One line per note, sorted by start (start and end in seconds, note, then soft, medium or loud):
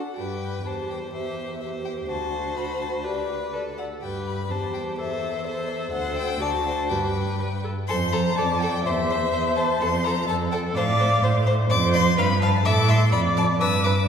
0.00 0.16 F#5 medium
0.16 0.62 G2 soft
0.16 0.62 G4 soft
0.16 0.68 B4 soft
0.16 0.67 G5 medium
0.65 2.06 E2 soft
0.65 1.12 G4 soft
0.65 1.12 C5 soft
0.65 0.89 A5 medium
0.90 0.98 G5 soft
1.13 1.60 G4 soft
1.13 1.60 C5 soft
1.13 1.60 E5 medium
1.60 2.10 G4 soft
1.60 2.08 C5 soft
1.60 1.68 E5 medium
1.85 1.93 G5 medium
2.09 3.79 D2 medium
2.09 3.04 F#4 medium
2.09 3.05 C5 medium
2.09 2.58 A5 medium
2.57 2.81 B5 medium
2.81 2.89 A5 medium
3.04 3.52 G4 soft
3.04 3.55 B4 soft
3.04 3.52 D5 medium
3.54 3.82 A4 soft
3.54 3.62 B4 medium
3.54 3.62 D5 medium
3.78 4.02 A4 soft
3.78 3.86 F#5 medium
4.02 4.52 G2 soft
4.02 4.47 G4 soft
4.02 4.52 B4 soft
4.02 4.25 G5 medium
4.26 4.52 B5 medium
4.50 5.92 E2 soft
4.50 5.00 G4 soft
4.50 4.97 C5 soft
4.50 4.74 A5 medium
4.74 4.82 G5 medium
4.98 5.45 A4 medium
4.98 5.44 C5 soft
4.98 5.46 E5 medium
5.44 5.91 A4 medium
5.44 5.70 C5 medium
5.44 5.92 C5 medium
5.68 5.91 E5 medium
5.92 6.37 D2 medium
5.92 6.42 A4 medium
5.92 6.38 C5 medium
5.92 6.16 F#5 medium
6.17 6.43 G5 medium
6.40 6.91 D2 medium
6.40 6.91 F#4 medium
6.40 6.49 D5 medium
6.40 6.89 A5 loud
6.66 6.92 C5 medium
6.89 7.68 G2 medium
6.89 7.34 G4 medium
6.89 7.69 B4 medium
6.89 7.62 G5 medium
7.40 7.48 B4 medium
7.64 7.72 A4 medium
7.88 8.32 F2 medium
7.88 7.97 A4 medium
7.88 8.39 C5 medium
7.88 8.14 C6 loud
8.13 8.21 A4 medium
8.13 8.37 A#5 loud
8.35 8.80 F2 medium
8.35 8.46 A4 medium
8.35 8.88 D5 medium
8.35 8.62 A5 loud
8.60 8.71 A4 medium
8.60 8.83 G5 loud
8.84 9.28 E2 medium
8.84 8.94 C5 medium
8.84 10.27 C5 medium
8.84 9.58 E5 loud
9.10 9.18 C5 medium
9.33 9.76 E2 medium
9.33 9.41 C5 medium
9.56 9.65 C5 medium
9.56 9.82 A5 medium
9.81 10.23 F2 medium
9.81 9.89 A4 medium
9.81 10.06 C6 loud
10.04 10.14 A4 medium
10.04 10.27 A#5 loud
10.27 10.70 F2 medium
10.27 10.77 A4 medium
10.27 10.37 A4 medium
10.27 10.35 A5 loud
10.51 10.61 A4 medium
10.51 10.59 G5 medium
10.75 11.18 A2 medium
10.75 10.85 C5 medium
10.75 11.24 D5 loud
10.75 11.45 F5 loud
10.99 11.07 C5 medium
11.23 11.65 A2 medium
11.23 11.69 C5 medium
11.23 11.31 C5 medium
11.46 11.54 C5 medium
11.69 12.13 F2 loud
11.69 12.19 C5 loud
11.69 11.78 D5 medium
11.69 11.92 D6 loud
11.93 12.02 D5 medium
11.93 12.17 C6 loud
12.17 12.60 G2 medium
12.17 12.65 B4 medium
12.17 12.26 F5 medium
12.17 12.41 B5 loud
12.42 12.50 F5 medium
12.42 12.67 A5 loud
12.65 13.08 A2 loud
12.65 13.12 A4 loud
12.65 12.73 E5 medium
12.65 12.91 D6 loud
12.88 12.96 E5 medium
12.88 13.11 C6 loud
13.12 13.56 F2 medium
13.12 13.20 D5 medium
13.12 13.61 D5 loud
13.12 13.20 B5 loud
13.37 13.45 D5 medium
13.37 13.45 A5 loud
13.61 14.04 G2 medium
13.61 13.69 B4 medium
13.61 14.08 B4 loud
13.61 13.86 E6 loud
13.84 13.93 B4 medium
13.84 14.08 D6 loud